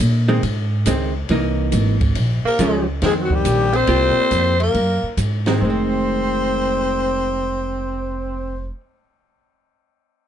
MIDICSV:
0, 0, Header, 1, 7, 480
1, 0, Start_track
1, 0, Key_signature, -4, "minor"
1, 0, Tempo, 431655
1, 485, Time_signature, 4, 2, 24, 8
1, 11429, End_track
2, 0, Start_track
2, 0, Title_t, "Alto saxophone"
2, 0, Program_c, 0, 65
2, 2751, Note_on_c, 0, 70, 80
2, 3182, Note_off_c, 0, 70, 0
2, 3397, Note_on_c, 0, 68, 80
2, 3485, Note_off_c, 0, 68, 0
2, 3612, Note_on_c, 0, 66, 58
2, 3724, Note_on_c, 0, 67, 91
2, 3741, Note_off_c, 0, 66, 0
2, 4183, Note_on_c, 0, 72, 112
2, 4199, Note_off_c, 0, 67, 0
2, 5130, Note_off_c, 0, 72, 0
2, 5152, Note_on_c, 0, 70, 84
2, 5734, Note_off_c, 0, 70, 0
2, 6256, Note_on_c, 0, 72, 80
2, 9663, Note_off_c, 0, 72, 0
2, 11429, End_track
3, 0, Start_track
3, 0, Title_t, "Tenor saxophone"
3, 0, Program_c, 1, 66
3, 2726, Note_on_c, 1, 58, 83
3, 3169, Note_off_c, 1, 58, 0
3, 3390, Note_on_c, 1, 56, 63
3, 3480, Note_off_c, 1, 56, 0
3, 3569, Note_on_c, 1, 54, 62
3, 3691, Note_on_c, 1, 55, 76
3, 3708, Note_off_c, 1, 54, 0
3, 4154, Note_on_c, 1, 60, 89
3, 4171, Note_off_c, 1, 55, 0
3, 5108, Note_off_c, 1, 60, 0
3, 5115, Note_on_c, 1, 58, 68
3, 5715, Note_off_c, 1, 58, 0
3, 6236, Note_on_c, 1, 60, 65
3, 9642, Note_off_c, 1, 60, 0
3, 11429, End_track
4, 0, Start_track
4, 0, Title_t, "Hollow-body jazz guitar"
4, 0, Program_c, 2, 26
4, 316, Note_on_c, 2, 51, 75
4, 320, Note_on_c, 2, 56, 71
4, 325, Note_on_c, 2, 60, 85
4, 466, Note_off_c, 2, 51, 0
4, 467, Note_off_c, 2, 56, 0
4, 470, Note_off_c, 2, 60, 0
4, 966, Note_on_c, 2, 56, 56
4, 967, Note_on_c, 2, 51, 46
4, 978, Note_on_c, 2, 60, 64
4, 1250, Note_off_c, 2, 51, 0
4, 1250, Note_off_c, 2, 56, 0
4, 1256, Note_off_c, 2, 60, 0
4, 1450, Note_on_c, 2, 52, 58
4, 1459, Note_on_c, 2, 58, 56
4, 1463, Note_on_c, 2, 63, 69
4, 2179, Note_off_c, 2, 52, 0
4, 2184, Note_off_c, 2, 58, 0
4, 2185, Note_off_c, 2, 63, 0
4, 2889, Note_on_c, 2, 53, 50
4, 2898, Note_on_c, 2, 56, 54
4, 2905, Note_on_c, 2, 61, 61
4, 3170, Note_off_c, 2, 53, 0
4, 3175, Note_off_c, 2, 56, 0
4, 3178, Note_off_c, 2, 61, 0
4, 3367, Note_on_c, 2, 51, 54
4, 3384, Note_on_c, 2, 60, 60
4, 4097, Note_off_c, 2, 51, 0
4, 4106, Note_off_c, 2, 60, 0
4, 4310, Note_on_c, 2, 58, 45
4, 4322, Note_on_c, 2, 65, 42
4, 4325, Note_on_c, 2, 67, 50
4, 5049, Note_off_c, 2, 58, 0
4, 5055, Note_off_c, 2, 65, 0
4, 5056, Note_off_c, 2, 67, 0
4, 6084, Note_on_c, 2, 51, 58
4, 6088, Note_on_c, 2, 56, 71
4, 6094, Note_on_c, 2, 60, 66
4, 6195, Note_off_c, 2, 51, 0
4, 6208, Note_on_c, 2, 51, 55
4, 6230, Note_off_c, 2, 56, 0
4, 6233, Note_off_c, 2, 60, 0
4, 6277, Note_on_c, 2, 56, 50
4, 6337, Note_on_c, 2, 60, 54
4, 9659, Note_off_c, 2, 51, 0
4, 9728, Note_off_c, 2, 56, 0
4, 9788, Note_off_c, 2, 60, 0
4, 11429, End_track
5, 0, Start_track
5, 0, Title_t, "Upright bass"
5, 0, Program_c, 3, 32
5, 0, Note_on_c, 3, 46, 94
5, 467, Note_off_c, 3, 46, 0
5, 480, Note_on_c, 3, 44, 76
5, 947, Note_off_c, 3, 44, 0
5, 959, Note_on_c, 3, 37, 82
5, 1426, Note_off_c, 3, 37, 0
5, 1442, Note_on_c, 3, 36, 71
5, 1908, Note_off_c, 3, 36, 0
5, 1926, Note_on_c, 3, 32, 90
5, 2389, Note_off_c, 3, 32, 0
5, 2399, Note_on_c, 3, 34, 80
5, 2695, Note_off_c, 3, 34, 0
5, 2881, Note_on_c, 3, 37, 91
5, 3346, Note_off_c, 3, 37, 0
5, 3358, Note_on_c, 3, 41, 70
5, 3825, Note_off_c, 3, 41, 0
5, 3833, Note_on_c, 3, 34, 81
5, 4302, Note_off_c, 3, 34, 0
5, 4313, Note_on_c, 3, 36, 85
5, 4611, Note_off_c, 3, 36, 0
5, 4792, Note_on_c, 3, 41, 89
5, 5262, Note_off_c, 3, 41, 0
5, 5274, Note_on_c, 3, 42, 76
5, 5572, Note_off_c, 3, 42, 0
5, 5753, Note_on_c, 3, 44, 85
5, 6223, Note_off_c, 3, 44, 0
5, 6246, Note_on_c, 3, 29, 83
5, 9652, Note_off_c, 3, 29, 0
5, 11429, End_track
6, 0, Start_track
6, 0, Title_t, "Muted upright bass strokes"
6, 2714, Note_on_c, 9, 29, 37
6, 2825, Note_off_c, 9, 29, 0
6, 4632, Note_on_c, 9, 29, 34
6, 4743, Note_off_c, 9, 29, 0
6, 5593, Note_on_c, 9, 29, 38
6, 5705, Note_off_c, 9, 29, 0
6, 11429, End_track
7, 0, Start_track
7, 0, Title_t, "Drums"
7, 0, Note_on_c, 9, 36, 25
7, 109, Note_off_c, 9, 36, 0
7, 478, Note_on_c, 9, 36, 20
7, 478, Note_on_c, 9, 51, 58
7, 589, Note_off_c, 9, 36, 0
7, 590, Note_off_c, 9, 51, 0
7, 952, Note_on_c, 9, 44, 57
7, 952, Note_on_c, 9, 51, 62
7, 959, Note_on_c, 9, 36, 17
7, 1064, Note_off_c, 9, 44, 0
7, 1064, Note_off_c, 9, 51, 0
7, 1070, Note_off_c, 9, 36, 0
7, 1433, Note_on_c, 9, 51, 53
7, 1440, Note_on_c, 9, 36, 23
7, 1544, Note_off_c, 9, 51, 0
7, 1552, Note_off_c, 9, 36, 0
7, 1912, Note_on_c, 9, 44, 57
7, 1912, Note_on_c, 9, 51, 63
7, 1921, Note_on_c, 9, 36, 20
7, 2023, Note_off_c, 9, 44, 0
7, 2023, Note_off_c, 9, 51, 0
7, 2032, Note_off_c, 9, 36, 0
7, 2233, Note_on_c, 9, 51, 47
7, 2239, Note_on_c, 9, 36, 63
7, 2345, Note_off_c, 9, 51, 0
7, 2350, Note_off_c, 9, 36, 0
7, 2394, Note_on_c, 9, 51, 59
7, 2401, Note_on_c, 9, 36, 24
7, 2505, Note_off_c, 9, 51, 0
7, 2512, Note_off_c, 9, 36, 0
7, 2878, Note_on_c, 9, 44, 46
7, 2878, Note_on_c, 9, 51, 57
7, 2881, Note_on_c, 9, 36, 19
7, 2989, Note_off_c, 9, 44, 0
7, 2989, Note_off_c, 9, 51, 0
7, 2993, Note_off_c, 9, 36, 0
7, 3355, Note_on_c, 9, 51, 53
7, 3359, Note_on_c, 9, 36, 20
7, 3359, Note_on_c, 9, 38, 35
7, 3466, Note_off_c, 9, 51, 0
7, 3470, Note_off_c, 9, 38, 0
7, 3471, Note_off_c, 9, 36, 0
7, 3674, Note_on_c, 9, 36, 48
7, 3786, Note_off_c, 9, 36, 0
7, 3835, Note_on_c, 9, 44, 54
7, 3835, Note_on_c, 9, 51, 59
7, 3838, Note_on_c, 9, 36, 22
7, 3946, Note_off_c, 9, 44, 0
7, 3946, Note_off_c, 9, 51, 0
7, 3949, Note_off_c, 9, 36, 0
7, 4151, Note_on_c, 9, 51, 44
7, 4262, Note_off_c, 9, 51, 0
7, 4306, Note_on_c, 9, 51, 53
7, 4314, Note_on_c, 9, 36, 20
7, 4417, Note_off_c, 9, 51, 0
7, 4425, Note_off_c, 9, 36, 0
7, 4792, Note_on_c, 9, 44, 49
7, 4792, Note_on_c, 9, 51, 59
7, 4795, Note_on_c, 9, 36, 19
7, 4903, Note_off_c, 9, 44, 0
7, 4903, Note_off_c, 9, 51, 0
7, 4907, Note_off_c, 9, 36, 0
7, 5115, Note_on_c, 9, 51, 44
7, 5226, Note_off_c, 9, 51, 0
7, 5277, Note_on_c, 9, 36, 19
7, 5277, Note_on_c, 9, 51, 50
7, 5388, Note_off_c, 9, 36, 0
7, 5388, Note_off_c, 9, 51, 0
7, 5753, Note_on_c, 9, 44, 46
7, 5753, Note_on_c, 9, 51, 58
7, 5755, Note_on_c, 9, 36, 18
7, 5864, Note_off_c, 9, 44, 0
7, 5864, Note_off_c, 9, 51, 0
7, 5866, Note_off_c, 9, 36, 0
7, 6072, Note_on_c, 9, 51, 43
7, 6076, Note_on_c, 9, 38, 37
7, 6183, Note_off_c, 9, 51, 0
7, 6187, Note_off_c, 9, 38, 0
7, 11429, End_track
0, 0, End_of_file